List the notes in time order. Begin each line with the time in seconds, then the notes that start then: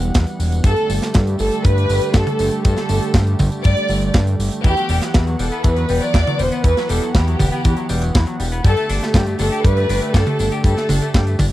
Already playing: E1 E3 G3 B3 G4 F#5, downlifter
0.02 closed hi-hat, tambourine
0.14 E2, kick, snare, closed hi-hat, tambourine
0.27 closed hi-hat, tambourine
0.39 E1, open hi-hat, tambourine
0.52 closed hi-hat, tambourine
0.64 G2 D3 G3 A3 G4 A4, kick, closed hi-hat, tambourine
0.76 closed hi-hat, tambourine
0.90 G1, open hi-hat, tambourine
1.02 snare, closed hi-hat, tambourine
1.14 G2, kick, snare, closed hi-hat, tambourine
1.27 closed hi-hat, tambourine
1.39 G1 A4, open hi-hat, tambourine
1.52 closed hi-hat, tambourine
1.64 G2 B4, kick, closed hi-hat, tambourine
1.77 closed hi-hat, tambourine
1.89 G1, open hi-hat, tambourine
2.02 closed hi-hat, tambourine
2.14 G2 A4, kick, snare, closed hi-hat, tambourine
2.26 closed hi-hat, high tom, tambourine
2.39 G1, open hi-hat, tambourine
2.51 closed hi-hat, tambourine
2.64 G2 A4, kick, closed hi-hat, tambourine
2.76 snare, closed hi-hat, tambourine
2.89 G1, open hi-hat, tambourine
3.02 closed hi-hat, tambourine
3.14 G2, kick, snare, closed hi-hat, tambourine
3.27 closed hi-hat, tambourine
3.39 G1, kick, open hi-hat, high tom, tambourine
3.52 closed hi-hat, tambourine
3.64 G2 D5, kick, closed hi-hat, tambourine
3.77 closed hi-hat, tambourine
3.89 G1, open hi-hat, tambourine
4.02 closed hi-hat, tambourine
4.14 G2, kick, snare, closed hi-hat, tambourine
4.27 closed hi-hat, tambourine
4.39 G1, open hi-hat, tambourine
4.52 closed hi-hat, tambourine
4.64 E2 E3 B3 G4 F#5, kick, closed hi-hat, tambourine
4.76 F#3, closed hi-hat, tambourine
4.89 E1 G3, open hi-hat, tambourine
5.02 F#3, snare, closed hi-hat, tambourine
5.14 E2 E3, kick, snare, closed hi-hat, tambourine
5.27 F#3, closed hi-hat, tambourine
5.39 E1 G3 A4, open hi-hat, tambourine
5.52 B3, closed hi-hat, tambourine
5.64 E2 E3 B4, kick, closed hi-hat, tambourine
5.77 F#3, closed hi-hat, tambourine
5.89 E1 G3, open hi-hat, tambourine
6.02 F#3 D5, closed hi-hat, tambourine
6.14 E2 E3, kick, snare, closed hi-hat, tambourine
6.27 F#3, closed hi-hat, high tom, tambourine
6.39 E1 G3 C5, open hi-hat, tambourine
6.52 B3, closed hi-hat, tambourine
6.64 E2 E3 B4, kick, closed hi-hat, tambourine
6.77 F#3, snare, closed hi-hat, tambourine
6.89 E1 G3 A4, open hi-hat, tambourine
7.02 F#3, closed hi-hat, tambourine
7.15 E2 E3 G4, kick, snare, closed hi-hat, tambourine
7.27 F#3, closed hi-hat, tambourine
7.39 E1 G3, kick, open hi-hat, high tom, tambourine
7.52 B3, closed hi-hat, tambourine
7.64 E2 E3, kick, closed hi-hat, tambourine
7.77 F#3, closed hi-hat, tambourine
7.89 E1 G3, open hi-hat, tambourine
8.02 F#3, closed hi-hat, tambourine
8.14 E2 E3, kick, snare, closed hi-hat, tambourine
8.26 F#3, closed hi-hat, tambourine
8.40 E1 G3, open hi-hat, tambourine
8.52 B3, closed hi-hat, tambourine
8.64 G2 D3 G3 A3 G4 A4, kick, closed hi-hat, tambourine
8.77 A3, closed hi-hat, tambourine
8.89 G1 D4, open hi-hat, tambourine
9.01 A3, snare, closed hi-hat, tambourine
9.14 G2 G3, kick, snare, closed hi-hat, tambourine
9.26 A3, closed hi-hat, tambourine
9.39 G1 D4 A4, open hi-hat, tambourine
9.52 G4, closed hi-hat, tambourine
9.64 G2 G3 B4, kick, closed hi-hat, tambourine
9.77 A3, closed hi-hat, tambourine
9.89 G1 D4, open hi-hat, tambourine
10.02 A3, closed hi-hat, tambourine
10.14 G2 G3 A4, kick, snare, closed hi-hat, tambourine
10.26 A3, closed hi-hat, high tom, tambourine
10.39 G1 D4, open hi-hat, tambourine
10.52 G4, closed hi-hat, tambourine
10.64 G2 G3 A4, kick, closed hi-hat, tambourine
10.77 A3, snare, closed hi-hat, tambourine
10.89 G1 D4, open hi-hat, high tom, tambourine
11.02 A3, closed hi-hat, tambourine
11.14 G2 G3, kick, snare, closed hi-hat, tambourine
11.27 A3, closed hi-hat, tambourine
11.39 G1 D4, kick, open hi-hat, high tom, tambourine